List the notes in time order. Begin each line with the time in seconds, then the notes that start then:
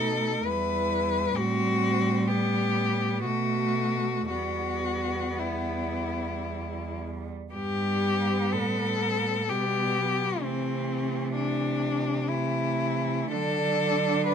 Already playing: B2 A3 D#4 A4
0.45 E2 G3 E4 B4
1.36 A2 C4 F#4
2.27 B3 G4
3.24 B2 A3 F#4
4.30 E2 G3 B3 F#4
5.39 G3 E4
7.53 G2 G3 B3 G4
8.52 A2 A4
9.48 B2 G3 B3 G4
9.97 F#3
10.43 C3 E3 A3 C4
11.35 D4
12.28 E3 A3 E4
13.31 D3 F#3 D4 A4
14.27 B4